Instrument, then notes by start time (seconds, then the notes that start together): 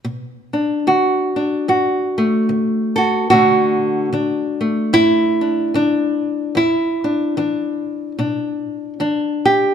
nylon-string guitar
0.05 B2
0.53 D4
0.87 D3 F#4
1.36 D4
1.68 F#2 F#4
2.18 A3
2.49 D3
2.96 F#4 A4
3.30 B2 D3 A3 D4 F#4
4.13 D3 D4
4.61 A3
4.93 F#2 E4
5.41 D4
5.74 D3 D4
6.55 E2 E4
7.04 D4
7.37 E3 D4
8.19 B2 D4
9.00 E3 D4
9.45 G4